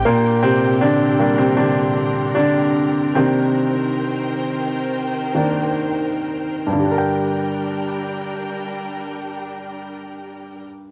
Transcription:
<<
  \new Staff \with { instrumentName = "String section" } { \time 4/4 \key g \minor \tempo 4 = 66 <bes, d' g' bes' g''>1 | <ees c'' g''>1 | <g d' bes' g''>1 | }
  \new Staff \with { instrumentName = "Grand piano" } { \time 4/4 \key g \minor << { <bes, bes>8 <c c'>8 <d d'>8. <c c'>16 <d d'>4 <d d'>4 | <c c'>2. r4 | r1 | } \\ { r4. <g bes d'>2~ <g bes d'>8 | <ees bes d'>4. r4 <ees bes d'>8 r4 | <g, d g d' bes' g''>1 | } >> }
>>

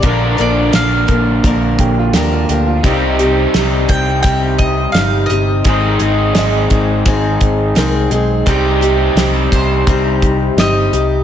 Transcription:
<<
  \new Staff \with { instrumentName = "Mandolin" } { \time 4/4 \key c \minor \tempo 4 = 85 d''8 d''8 f''2 r4 | r4. g''8 g''8 ees''8 f''8 ees''8~ | ees''4. r2 r8 | r4. c''4. ees''4 | }
  \new Staff \with { instrumentName = "Upright piano" } { \time 4/4 \key c \minor r2 r8 g'16 f'16 g'16 f'16 g'16 f'16 | ees'8 r2. r8 | r4 <d'' ees''>2 bes'8 aes'8 | g'8 r2. r8 | }
  \new Staff \with { instrumentName = "Steel-string acoustic guitar" } { \time 4/4 \key c \minor <bes, d f bes d' bes'>8 <f bes d' bes'>8 <f bes d' bes'>8 <f bes d' bes'>8 <bes, d f bes d' bes'>4 <f bes d' bes'>8 <f bes d' bes'>8 | <c g c' ees' g'>8 <c' ees' g'>8 <g c' ees' g'>4 <c g c' ees' g'>4 <g c' ees' g'>8 <c' ees' g'>8 | <aes, ees aes c' ees' aes'>8 <aes c' ees' aes'>8 <aes c' ees' aes'>8 <aes c' ees' aes'>8 <aes, ees aes c' ees' aes'>4 <aes c' ees' aes'>8 <aes c' ees' aes'>8 | <c g c' ees' g'>8 <c' ees' g'>8 <g c' ees' g'>4 <c g c' ees' g'>4 <g c' ees' g'>8 <c' ees' g'>8 | }
  \new Staff \with { instrumentName = "Overdriven electric guitar" } { \time 4/4 \key c \minor <bes, d f bes d' bes'>1 | <c g c' ees' g'>1 | <aes, ees aes c' ees' aes'>1 | <c g c' ees' g'>1 | }
  \new Staff \with { instrumentName = "Picked electric bass" } { \clef bass \time 4/4 \key c \minor bes,,8 bes,,8 bes,,8 bes,,8 bes,,8 bes,,8 ees,8 d,8 | c,4 c,8 c,8 c,4 g,,8 g,,8 | aes,,8 aes,,8 aes,,8 aes,,8 aes,,8 aes,,8 c,8 b,,8 | c,4 c,8 c,8 c,4 g,,8 c,8 | }
  \new DrumStaff \with { instrumentName = "Drums" } \drummode { \time 4/4 <hh bd>8 hh8 <hh sn>8 <hh bd>8 <hh bd>8 <hh bd>8 <hh sn>8 hh8 | <hh bd>8 hh8 <hh sn>8 <hh bd>8 <hh bd>8 <hh bd>8 <hh sn>8 hh8 | <hh bd>8 hh8 <hh sn>8 <hh bd>8 <hh bd>8 <hh bd>8 <hh sn>8 hh8 | <hh bd>8 hh8 <hh sn>8 <hh bd>8 <hh bd>8 <hh bd>8 <hh sn>8 hh8 | }
>>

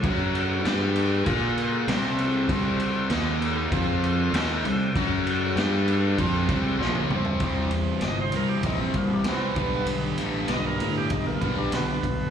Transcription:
<<
  \new Staff \with { instrumentName = "Tonewheel organ" } { \time 4/4 \key c \mixolydian \tempo 4 = 98 <fis' cis'' fis''>4 <g' d'' g''>4 <f' bes' f''>4 <c' e' g' e''>4~ | <c' e' g' e''>4 <ees' bes' ees''>4 <f' c'' f''>4 <e' g' c'' g''>4 | <fis' cis'' fis''>4 <g' d'' g''>4 <e' g' c'' g''>2 | r1 |
r1 | }
  \new Staff \with { instrumentName = "Tonewheel organ" } { \time 4/4 \key c \mixolydian r1 | r1 | r1 | r4 <d'' ees''>16 c''16 bes'16 g'16 ees'16 c'16 bes16 g16 b4 |
r4 <d'' ees''>16 bes'16 bes'16 g'16 ees'16 bes16 bes16 g16 b4 | }
  \new Staff \with { instrumentName = "Distorted electric guitar" } { \time 4/4 \key c \mixolydian <fis cis' fis'>4 <g d' g'>4 <bes f' bes'>4 <c g c'>4 | <c g c'>4 <ees bes ees'>4 <f c' f'>4 <ees bes ees'>8 <c g>8 | <fis cis' fis'>4 <g d' g'>4 <f c' f'>8 <c g c'>8 <bes, f bes>8 <c g c'>8 | <c e g c' e' c''>4. <c e g c' e' c''>4. <c e g c' e' c''>8 <b d' g' b'>8~ |
<b d' g' b'>4 <b d' g' b'>4. <b d' g' b'>4 r8 | }
  \new Staff \with { instrumentName = "Distorted electric guitar" } { \clef bass \time 4/4 \key c \mixolydian <fis cis' fis'>4 <g d' g'>4 <bes f' bes'>4 <c g c'>4 | <c g c'>4 <ees bes ees'>4 <f c' f'>4 <ees bes ees'>8 <c g>8 | <fis cis' fis'>4 <g d' g'>4 <f c' f'>8 <c g c'>8 <bes, f bes>8 <c g c'>8 | <c g c'>8 <c g>8 <c g>8 <c g>8 <c g c'>8 <c g>8 <c g c'>8 <g, d g>8 |
<g, d>8 <g, d g>8 <g, d>8 <g, d>8 <g, d>8 <g, d g>8 <g, d>8 <g, d>8 | }
  \new Staff \with { instrumentName = "Fingered electric bass" } { \clef bass \time 4/4 \key c \mixolydian fis,4 g,4 bes,4 c,4 | c,4 ees,4 f,4 ees,8 c,8 | fis,4 g,4 f,8 c,8 bes,,8 c,8 | c,8 e,8 g,,8 c,8 bes,,8 c,8 c,8 b,,8 |
b,,8 a,,8 b,,8 a,8 b,,8 b,,8 b,,8 b,,8 | }
  \new DrumStaff \with { instrumentName = "Drums" } \drummode { \time 4/4 <cymc bd>8 cymc8 <cymc sn>8 cymc8 <cymc bd>8 cymc8 <cymc sn>8 cymc8 | <cymc bd>8 cymc8 <cymc sn>8 cymc8 <cymc bd>8 cymc8 <cymc sn>8 cymc8 | <cymc bd>8 cymc8 <cymc sn>8 cymc8 <cymc bd>8 <cymc bd>8 sn16 tommh16 toml16 tomfh16 | <bd cymr>8 cymr8 <cymr sn>8 cymr8 <bd cymr>8 <bd cymr>8 <cymr sn>8 <bd cymr>8 |
cymr8 cymr8 <cymr sn>8 cymr8 <bd cymr>8 <bd cymr>8 <cymr sn>8 <bd cymr>8 | }
>>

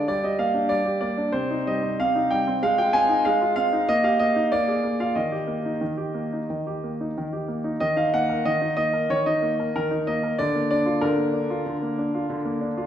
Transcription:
\new Staff \with { instrumentName = "Grand piano" } { \time 4/4 \key ees \major \tempo 4 = 94 << { d''16 ees''16 f''8 d''8 d''8 c''8 ees''8 f''8 g''8 | f''16 g''16 aes''8 f''8 f''8 ees''16 f''16 ees''8 d''8. f''16 | ees''2. r4 | \key bes \phrygian ees''16 f''16 ges''8 ees''8 ees''8 des''16 ees''8. bes'8 ees''8 |
d''8 d''8 bes'2~ bes'8 r8 | } \\ { g16 g'16 bes16 d'16 g16 g'16 bes16 d'16 c16 ees'16 g16 c'16 c16 ees'16 g16 c'16 | aes16 f'16 c'16 ees'16 aes16 f'16 c'16 ees'16 bes16 g'16 bes16 ees'16 bes16 aes'16 bes16 f'16 | ees16 g'16 bes16 ees'16 ees16 g'16 bes16 ees'16 ees16 g'16 bes16 ees'16 ees16 g'16 bes16 ees'16 | ees16 ees'16 bes16 bes'16 ees16 ees'16 bes16 bes'16 ees16 ees'16 bes16 bes'16 ees16 ees'16 bes16 bes'16 |
d16 bes16 d'16 f'16 d16 bes16 d'16 f'16 d16 bes16 d'16 f'16 d16 bes16 d'16 f'16 | } >> }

